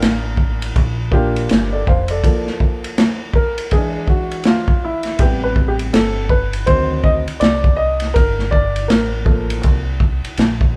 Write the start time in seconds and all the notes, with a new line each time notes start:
Already playing: D3 A#3 D4 F4 G4 A#4
0.02 A1, snare, hi-hat pedal, ride
0.37 kick
0.62 ride
0.76 A#1, kick, ride
1.11 A#3 D4 F4 G4, kick
1.36 ride
1.49 G1, snare, hi-hat pedal, ride
1.72 A4 D5
1.87 F1 C5 F5, kick
2.08 A4 D5, ride
2.24 F3 A#3 A4, kick, ride
2.47 snare
2.60 kick
2.84 ride
2.98 snare, hi-hat pedal, ride
3.34 A#4, kick
3.58 ride
3.71 E3 G#3 D4 G#4, kick, ride
4.08 F#4, kick
4.31 ride
4.44 F4, snare, hi-hat pedal, ride
4.68 kick
4.84 E4
5.03 snare, ride
5.19 A1 C3 G3 B3 G4, kick, ride
5.44 B4
5.56 kick
5.68 G4
5.79 ride
5.93 G1 A4, snare, hi-hat pedal, ride
6.29 B4, kick
6.53 ride
6.66 D2 D#3 F#3 C4 C5, kick, ride
7.03 D#5, kick
7.27 muted fingered electric bass stroke, ride
7.40 C2 D5, snare, hi-hat pedal, ride
7.64 kick
7.76 D#5
8.00 snare, ride
8.14 G1 A#4, kick, ride
8.39 snare
8.51 D5, kick
8.76 ride
8.88 A1 A#4, snare, hi-hat pedal, ride
9.25 F3 A#3 A4, kick
9.50 ride
9.63 C2, kick, ride
10.00 kick
10.25 muted fingered electric bass stroke, ride
10.37 A#1, snare, hi-hat pedal, ride
10.61 kick